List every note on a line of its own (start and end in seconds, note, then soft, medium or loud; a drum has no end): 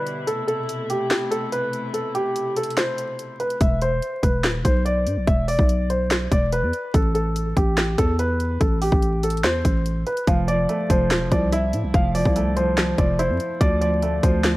0.00 3.57 B2 medium
0.00 0.24 D3 medium
0.00 0.24 G3 medium
0.00 3.57 E4 medium
0.00 0.25 B4 medium
0.07 closed hi-hat medium
0.27 3.57 C3 medium
0.27 3.57 A3 medium
0.27 0.44 A4 medium
0.27 closed hi-hat medium
0.47 0.87 A4 medium
0.47 closed hi-hat medium
0.69 closed hi-hat medium
0.90 1.29 G4 medium
0.90 closed hi-hat medium
1.11 snare loud
1.11 clap medium
1.11 closed hi-hat medium
1.31 1.48 A4 medium
1.31 closed hi-hat medium
1.52 1.92 B4 medium
1.52 closed hi-hat medium
1.73 closed hi-hat medium
1.94 2.11 A4 medium
1.94 closed hi-hat medium
2.15 2.54 G4 medium
2.15 closed hi-hat medium
2.36 closed hi-hat medium
2.56 2.73 A4 medium
2.56 closed hi-hat medium
2.63 closed hi-hat medium
2.70 closed hi-hat soft
2.77 3.36 C5 medium
2.77 snare loud
2.77 clap medium
2.77 closed hi-hat medium
2.98 closed hi-hat medium
3.19 closed hi-hat medium
3.40 3.57 B4 medium
3.40 closed hi-hat soft
3.50 closed hi-hat medium
3.61 4.01 E1 loud
3.61 3.78 E5 medium
3.61 kick loud
3.61 closed hi-hat medium
3.82 4.21 C5 medium
3.82 closed hi-hat medium
4.02 closed hi-hat medium
4.23 4.46 E1 loud
4.23 4.62 B4 medium
4.23 kick medium
4.23 closed hi-hat medium
4.44 4.56 D1 loud
4.44 snare loud
4.44 clap medium
4.44 closed hi-hat medium
4.54 4.64 E1 loud
4.65 5.08 B1 loud
4.65 4.82 C5 medium
4.65 kick medium
4.65 closed hi-hat medium
4.85 5.25 D5 medium
4.85 closed hi-hat medium
5.07 5.18 G2 loud
5.07 closed hi-hat medium
5.17 5.27 B1 loud
5.27 5.57 E1 loud
5.27 5.44 E5 medium
5.27 kick loud
5.27 closed hi-hat medium
5.48 5.87 D5 medium
5.48 open hi-hat medium
5.59 6.29 B1 loud
5.59 kick loud
5.69 closed hi-hat medium
5.90 6.29 C5 medium
5.90 closed hi-hat medium
6.11 snare loud
6.11 clap medium
6.11 closed hi-hat medium
6.32 6.64 E1 loud
6.32 6.48 D5 medium
6.32 kick medium
6.32 closed hi-hat medium
6.52 6.92 B4 medium
6.52 closed hi-hat medium
6.63 6.73 E2 loud
6.73 closed hi-hat medium
6.94 7.54 A1 loud
6.94 7.11 A4 medium
6.94 kick loud
6.94 closed hi-hat medium
7.15 7.54 A4 medium
7.15 closed hi-hat medium
7.36 closed hi-hat medium
7.57 7.97 A1 loud
7.57 7.96 G4 medium
7.57 kick medium
7.57 closed hi-hat medium
7.77 snare loud
7.77 clap medium
7.77 closed hi-hat medium
7.98 8.58 E2 loud
7.98 8.15 A4 medium
7.98 kick medium
7.98 closed hi-hat medium
8.19 8.58 B4 medium
8.19 closed hi-hat medium
8.40 closed hi-hat medium
8.60 8.91 A1 loud
8.60 8.77 A4 medium
8.60 kick loud
8.60 closed hi-hat medium
8.82 9.21 G4 medium
8.82 open hi-hat medium
8.92 9.46 A1 loud
8.92 kick loud
9.02 closed hi-hat medium
9.23 9.40 A4 medium
9.23 closed hi-hat medium
9.30 closed hi-hat medium
9.37 closed hi-hat soft
9.44 9.64 E2 loud
9.44 10.03 C5 medium
9.44 snare loud
9.44 clap medium
9.44 closed hi-hat medium
9.65 10.05 A1 loud
9.65 kick medium
9.65 closed hi-hat medium
9.86 closed hi-hat medium
10.07 10.23 B4 medium
10.07 closed hi-hat soft
10.17 closed hi-hat medium
10.27 10.67 F1 loud
10.27 10.47 F3 medium
10.27 10.44 F5 medium
10.27 kick loud
10.27 closed hi-hat medium
10.48 10.88 F3 medium
10.48 10.87 D5 medium
10.48 closed hi-hat medium
10.69 11.73 A3 medium
10.69 closed hi-hat medium
10.90 11.12 F1 loud
10.90 11.10 F3 medium
10.90 11.29 C5 medium
10.90 kick medium
10.90 closed hi-hat medium
11.11 11.23 E1 loud
11.11 11.30 F3 medium
11.11 snare loud
11.11 clap medium
11.11 closed hi-hat medium
11.21 11.31 F1 loud
11.32 11.75 C2 loud
11.32 11.93 F3 medium
11.32 11.49 D5 medium
11.32 kick medium
11.32 closed hi-hat medium
11.52 12.57 E4 loud
11.52 11.92 E5 medium
11.52 closed hi-hat medium
11.73 11.85 A2 loud
11.73 closed hi-hat medium
11.84 11.94 C2 loud
11.94 12.24 F1 loud
11.94 12.13 F3 medium
11.94 12.11 F5 medium
11.94 kick loud
11.94 closed hi-hat medium
12.15 12.55 F3 medium
12.15 12.54 D5 medium
12.15 open hi-hat medium
12.25 12.95 C2 loud
12.25 kick loud
12.36 13.40 A3 medium
12.36 closed hi-hat medium
12.57 12.76 F3 medium
12.57 12.96 C5 medium
12.57 closed hi-hat medium
12.77 12.97 F3 medium
12.77 snare loud
12.77 clap medium
12.77 closed hi-hat medium
12.98 13.31 F1 loud
12.98 13.59 F3 medium
12.98 13.15 D5 medium
12.98 kick medium
12.98 closed hi-hat medium
13.19 13.61 E4 medium
13.19 13.58 C5 medium
13.19 closed hi-hat medium
13.30 13.39 F2 loud
13.40 closed hi-hat medium
13.61 14.21 D2 loud
13.61 13.80 F3 medium
13.61 13.78 D5 medium
13.61 kick loud
13.61 closed hi-hat medium
13.81 14.22 F3 medium
13.81 14.21 D5 medium
13.81 closed hi-hat medium
14.02 14.57 A3 medium
14.02 closed hi-hat medium
14.23 14.57 D2 loud
14.23 14.43 F3 medium
14.23 14.57 C5 medium
14.23 kick medium
14.23 closed hi-hat medium
14.44 14.57 F3 medium
14.44 snare loud
14.44 clap medium
14.44 closed hi-hat medium